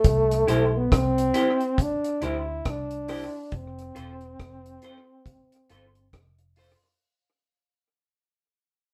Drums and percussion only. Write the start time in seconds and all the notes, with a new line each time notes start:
0.04 kick, closed hi-hat
0.31 closed hi-hat
0.48 closed hi-hat
0.92 kick, cross-stick, closed hi-hat
1.18 closed hi-hat
1.34 closed hi-hat
1.61 closed hi-hat
1.78 kick, closed hi-hat
2.04 closed hi-hat
2.22 closed hi-hat
2.65 kick, cross-stick, closed hi-hat
2.91 closed hi-hat
3.08 cross-stick, open hi-hat
3.52 kick, closed hi-hat
3.79 closed hi-hat
3.96 closed hi-hat
4.21 closed hi-hat
4.40 kick, cross-stick, closed hi-hat
4.66 closed hi-hat
4.82 closed hi-hat
5.26 kick, closed hi-hat
5.52 closed hi-hat
5.70 closed hi-hat
5.95 closed hi-hat
6.13 kick, cross-stick, closed hi-hat
6.39 closed hi-hat
6.56 open hi-hat